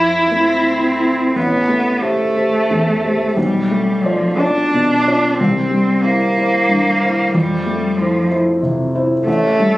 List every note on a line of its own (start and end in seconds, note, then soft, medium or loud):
0.00 0.27 F2 soft
0.00 0.24 F3 soft
0.00 1.15 E4 soft
0.00 0.30 A4 soft
0.31 1.32 A3 soft
0.31 1.38 C4 medium
0.31 1.32 E4 soft
0.31 1.32 A4 soft
1.36 3.33 A1 soft
1.36 2.04 B3 medium
1.69 2.23 A3 soft
2.02 3.36 A3 medium
2.02 2.33 G4 soft
2.02 2.33 C5 soft
2.36 2.67 G4 soft
2.36 2.67 C5 soft
2.70 3.24 E2 soft
3.04 3.34 G4 soft
3.04 3.34 C5 soft
3.37 5.35 B1 soft
3.37 4.06 G3 medium
3.71 4.26 A3 soft
4.04 4.39 F3 medium
4.04 4.37 F4 soft
4.04 4.37 D5 soft
4.38 5.36 D4 medium
4.38 4.70 F4 soft
4.38 4.70 D5 soft
4.74 5.26 B2 soft
5.07 5.36 F4 soft
5.07 5.37 D5 soft
5.37 7.31 C2 soft
5.37 6.04 C4 medium
5.71 6.23 G3 soft
6.03 7.34 A#3 medium
6.03 6.33 E4 soft
6.03 6.33 C5 soft
6.37 6.66 E4 soft
6.37 6.67 C5 soft
6.69 7.21 G2 soft
7.02 7.31 E4 soft
7.02 7.31 C5 soft
7.34 9.23 F2 soft
7.34 7.99 G3 medium
7.66 8.18 A3 soft
7.98 8.30 F3 medium
7.98 8.27 E4 soft
7.98 8.27 C5 soft
8.31 8.60 E4 soft
8.31 8.60 C5 soft
8.62 9.14 C3 soft
8.95 9.24 E4 soft
8.95 9.24 C5 soft
9.27 9.78 A1 medium
9.27 9.78 A3 medium
9.60 9.78 G3 soft